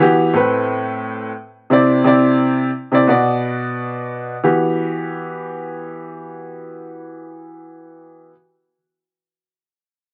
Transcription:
upright piano
0.00 E3 B3 F#4 G4
0.33 A2 A3 C4 B4
1.70 C3 C4 E4 D5
2.04 C3 C4 E4 D5
2.92 C3 C4 E4 D5
3.07 B2 B3 F#4 D5
4.44 E3 B3 F#4 G4

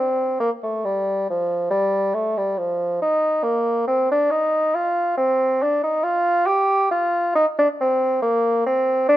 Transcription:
bassoon
Already playing: C4
0.40 A#3
0.63 A3
0.85 G3
1.30 F3
1.71 G3
2.14 A3
2.38 G3
2.58 F3
3.02 D#4
3.44 A#3
3.87 C4
4.11 D4
4.31 D#4
4.75 F4
5.17 C4
5.62 D4
5.83 D#4
6.03 F4
6.47 G4
6.91 F4
7.35 D#4
7.59 D4
7.81 C4
8.22 A#3
8.66 C4
9.08 D4

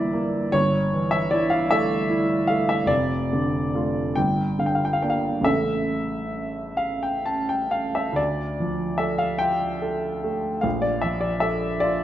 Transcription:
grand piano
Already playing: G1 E3 A#3 E4 D5 E5
0.13 A#3
0.52 G1 C#5
0.93 E3
1.11 E5
1.31 E4 D5
1.50 F5
1.71 A3 E5
2.10 E4
2.47 A3 F5
2.69 E5
2.86 F1 D5
3.33 D3
3.75 A3 F4
4.16 G1 G5
4.59 D3 F5
4.66 G5
4.75 F5
4.85 G5
4.93 F5
5.02 A#3 D4 G5
5.10 F5
5.41 A1 C#3 A3 E5
5.45 A4
6.77 F5
7.03 G5
7.26 A5
7.49 G5
7.71 F5
7.95 E5
8.13 D2 D5
8.60 F3
8.98 A4 E5
9.18 F5
9.39 F4 G5
9.82 A4
10.24 A3
10.61 A#1 F5
10.82 D5
11.02 F3 E5
11.21 D5
11.40 A4 E5
11.80 F4 D5

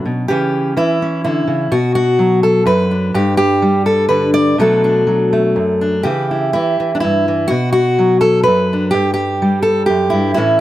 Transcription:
steel-string acoustic guitar
Already playing: F#3 C#4 D4 B4
0.05 B2
0.28 C#3 E3 C#4 G4
0.77 E3 E4
1.02 C#4
1.24 D3 E4
1.47 C#3
1.71 B2 F#4
1.95 F#4
2.19 F#3
2.43 A4
2.65 F#2 B4
2.91 D4
3.14 G2 G4
3.37 G4
3.62 G3
3.86 A4
4.09 D3 B4
4.34 D5
4.58 B2 F#3 A3 D4 A4
4.84 D4
5.07 F#3
5.33 A3
5.56 F#2
5.81 D4
6.03 C#3 E3 E4 G4
6.31 E4
6.53 E3 E4
6.80 E3
6.95 D4
7.00 G2 E4
7.28 E3
7.48 B2 F#4
7.72 F#4
7.99 F#3
8.21 A4
8.43 F#2 B4
8.73 D4
8.91 G2 G4
9.14 G4
9.42 G3
9.62 A4
9.86 F#2 G4
10.10 G2 E4
10.34 A2 E3 C#4 E4

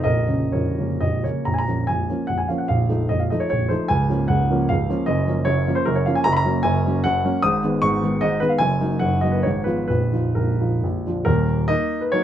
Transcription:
grand piano
0.04 A#0 A#1 A#4 D#5
0.29 C#3 A#3 C#4
0.52 A#0 A#1 A#4 C#5
0.79 C#3 A#3 C#4
1.00 A#0 A#1 D#5
1.24 C#3 A#3 C#4 C#5
1.45 A#0 A#1 A#5
1.54 G#5
1.58 A#5
1.68 F3 A#3 C#4
1.87 A#0 A#1 G#5
2.10 F3 A#3 C#4
2.27 A#0 A#1 F#5
2.38 G#5
2.48 F3 A#3 C#4 F5
2.58 F#5
2.68 A#0 A#1 F5
2.89 F3 A3 D#4
3.09 A#0 A#1 D#5
3.19 F5
3.30 F3 A3 D#4 D#5
3.40 C#5
3.50 A#0 A#1 C#5
3.69 F3 A3 D#4 C5
3.88 C#1 C#2 G#5
4.09 F3 A#3 C#4
4.28 C#1 C#2 F#5
4.51 F3 A#3 C#4
4.69 C#1 C#2 F5
4.90 F3 A#3 C#4
5.06 F#1 F#2 D#5
5.27 F3 A#3 C#4
5.45 F#1 F#2 C#5
5.67 F3 A#3 C#4
5.75 C5
5.86 F#1 F#2 A#4
5.96 C#5
6.06 F3 A#3 C#4 F5
6.15 G#5
6.24 F#1 F#2 A#5
6.33 B5
6.37 A#5
6.45 F#3 A#3 C#4
6.63 F#1 F#2 G#5
6.86 F#3 A#3 C#4
7.04 F#1 F#2 F#5
7.24 F#3 A#3 C#4
7.42 G#1 G#2 D#6
7.64 D#3 G#3 B3
7.82 G#1 G#2 C#6
8.03 D#3 G#3 B3
8.21 G#1 G#2 D#5
8.40 D#3 G#3 B3 B4
8.49 F5
8.58 F#1 F#2 G#5
8.80 F#3 A#3 D#4
8.99 F#1 F#2 F#5
9.21 F#3 A#3 D#4 D#5
9.32 B4
9.43 G#1 G#2 C#5
9.64 F3 B3 F4 B4
9.88 A#0 A#1 B4
10.13 F3 D#4 F4
10.35 A#0 A#1 A#4
10.61 F3 D#4 F4
10.83 A#0 A#1
11.07 F3 D4 F4
11.25 D#1 D#2 A#4
11.68 A#3 D#4 D#5
12.01 B4
12.12 F#3 A#3 D#4 C#5

